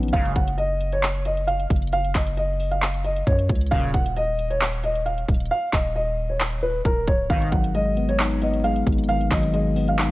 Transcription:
Already playing: 808-style bass A#1, tine electric piano D#3 F#3 B3 C#4 D#4
0.03 closed hi-hat
0.08 closed hi-hat
0.13 808-style bass F#1, analog polysynth F#2 G#2 C#3, grand piano F5, kick, closed hi-hat
0.25 closed hi-hat
0.36 808-style bass F#1, grand piano F#5, kick, closed hi-hat
0.48 closed hi-hat
0.58 grand piano D#5, closed hi-hat
0.81 closed hi-hat
0.92 grand piano C#5, closed hi-hat
1.03 clap, closed hi-hat
1.15 closed hi-hat
1.25 grand piano D#5, closed hi-hat
1.37 closed hi-hat
1.47 grand piano F5, closed hi-hat
1.60 closed hi-hat
1.70 808-style bass F#1, kick, closed hi-hat
1.76 closed hi-hat
1.82 closed hi-hat
1.87 closed hi-hat
1.93 grand piano F5, closed hi-hat
2.05 closed hi-hat
2.15 808-style bass F#1, grand piano D#5, kick, clap, closed hi-hat
2.27 closed hi-hat
2.37 grand piano D#5, closed hi-hat
2.60 open hi-hat
2.71 grand piano F5, closed hi-hat
2.82 clap, closed hi-hat
2.94 closed hi-hat
3.04 grand piano D#5, closed hi-hat
3.16 closed hi-hat
3.27 808-style bass F#2, grand piano C#5, kick, closed hi-hat
3.39 closed hi-hat
3.49 808-style bass C#2, kick, closed hi-hat
3.55 closed hi-hat
3.61 closed hi-hat
3.66 closed hi-hat
3.71 808-style bass D#1, analog polysynth F#2 A#2 C#3, grand piano F5, kick, closed hi-hat
3.84 closed hi-hat
3.94 808-style bass D#1, grand piano F#5, kick, closed hi-hat
4.06 closed hi-hat
4.16 grand piano D#5, closed hi-hat
4.39 closed hi-hat
4.50 grand piano C#5, closed hi-hat
4.61 clap, closed hi-hat
4.73 closed hi-hat
4.84 grand piano D#5, closed hi-hat
4.95 closed hi-hat
5.06 grand piano F5, closed hi-hat
5.18 closed hi-hat
5.28 808-style bass D#1, kick, closed hi-hat
5.34 closed hi-hat
5.40 closed hi-hat
5.46 closed hi-hat
5.51 grand piano F5
5.73 808-style bass D#1, grand piano D#5, kick, clap
5.95 grand piano D#5
6.30 grand piano C#5
6.40 clap
6.63 grand piano B4
6.85 808-style bass D#1, grand piano A#4, kick
7.07 808-style bass C#1, grand piano C#5, kick
7.29 808-style bass G#1, analog polysynth G#2 B2 D#3, tine electric piano D#3, grand piano F5, kick, closed hi-hat
7.42 closed hi-hat
7.52 808-style bass G#1, tine electric piano F#3, grand piano F#5, kick, closed hi-hat
7.64 closed hi-hat
7.74 tine electric piano G#3, grand piano D#5, closed hi-hat
7.97 tine electric piano B3, closed hi-hat
8.09 grand piano C#5, closed hi-hat
8.19 tine electric piano D#4, clap, closed hi-hat
8.31 closed hi-hat
8.42 tine electric piano B3, grand piano D#5, closed hi-hat
8.54 closed hi-hat
8.64 tine electric piano G#3, grand piano F5, closed hi-hat
8.76 closed hi-hat
8.87 808-style bass G#1, kick, closed hi-hat
8.92 closed hi-hat
8.98 closed hi-hat
9.04 closed hi-hat
9.09 tine electric piano D#3, grand piano F5, closed hi-hat
9.21 closed hi-hat
9.31 808-style bass G#1, tine electric piano F#3, grand piano D#5, kick, clap, closed hi-hat
9.43 closed hi-hat
9.54 tine electric piano G#3, grand piano D#5, closed hi-hat
9.76 tine electric piano B3, open hi-hat
9.88 grand piano F5, closed hi-hat
9.99 tine electric piano D#4, clap, closed hi-hat

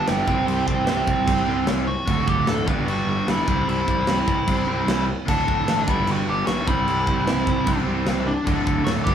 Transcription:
Already playing: overdriven electric guitar G2 D3 G3 B3 D4 G4
0.08 picked electric bass G1, distorted electric guitar G2 D3 G3, lead electric guitar C4, snare, crash
0.26 picked electric bass C2, overdriven electric guitar C3 G3 C4 E4 G4 C5, kick
0.46 picked electric bass C2, lead electric guitar C4, crash
0.67 picked electric bass C2, lead electric guitar C4, kick
0.86 picked electric bass C2, distorted electric guitar C3 G3 C4, lead electric guitar C4, snare, crash
1.07 picked electric bass C2, kick
1.26 picked electric bass C2, overdriven electric guitar C3 G3 C4 E4 G4 C5, kick, crash
1.46 picked electric bass C2, overdriven electric guitar C3 G3 C4 E4 G4 C5
1.67 picked electric bass C2, snare, crash
1.87 lead electric guitar F#4
2.06 picked electric bass D1, overdriven electric guitar D2 A2 D3 A3 F#4, kick, crash
2.28 picked electric bass D1, lead electric guitar G4, kick
2.47 picked electric bass D1, lead electric guitar A4, snare, crash
2.66 picked electric bass G1, overdriven electric guitar G2 D3 G3 B3 D4 G4, lead electric guitar B4, kick
2.86 picked electric bass G1, lead electric guitar F#4, crash
3.07 picked electric bass G1, lead electric guitar F#4
3.26 picked electric bass G1, distorted electric guitar G2 D3 G3, snare, crash
3.30 lead electric guitar E4
3.45 picked electric bass C2, overdriven electric guitar C3 G3 C4 E4 G4 C5, kick
3.68 picked electric bass C2, lead electric guitar E4, crash
3.88 picked electric bass C2, kick
4.07 picked electric bass C2, distorted electric guitar C3 G3 C4, lead electric guitar E4, snare, crash
4.28 picked electric bass C2, kick
4.46 picked electric bass C2, overdriven electric guitar C3 G3 C4 E4 G4 C5, kick, crash
4.65 picked electric bass C2, overdriven electric guitar C3 G3 C4 E4 G4 C5
4.87 picked electric bass C2, snare, crash
5.25 picked electric bass D1, overdriven electric guitar D2 A2 D3 A3 F#4, lead electric guitar D4, kick, crash
5.48 picked electric bass D1, kick
5.67 picked electric bass A1, snare, crash
5.86 picked electric bass G1, overdriven electric guitar G2 D3 G3 B3 D4 G4, lead electric guitar E4, kick
6.07 picked electric bass G1, crash
6.12 lead electric guitar F#4
6.29 picked electric bass G1, lead electric guitar G4
6.47 picked electric bass B1, distorted electric guitar G2 D3 G3, lead electric guitar F#4, snare, crash
6.65 picked electric bass C2, overdriven electric guitar C3 G3 C4 E4 G4 C5, lead electric guitar E4, kick
6.88 picked electric bass C2, crash
7.07 picked electric bass C2, kick
7.27 picked electric bass C2, distorted electric guitar C3 G3 C4, snare, crash
7.47 picked electric bass C2, kick
7.65 picked electric bass C2, overdriven electric guitar C3 G3 C4 E4 G4 C5, kick, crash
7.85 picked electric bass C2, overdriven electric guitar C3 G3 C4 E4 G4 C5
8.07 picked electric bass C2, snare, crash
8.27 lead electric guitar D4
8.45 picked electric bass D1, overdriven electric guitar D2 A2 D3 A3 F#4, kick, crash
8.67 picked electric bass D1, kick
8.84 picked electric bass D1, lead electric guitar F#4, snare, crash
9.04 picked electric bass G1, overdriven electric guitar G2 D3 G3 B3 D4 G4, lead electric guitar G4, kick
9.09 distorted electric guitar G3

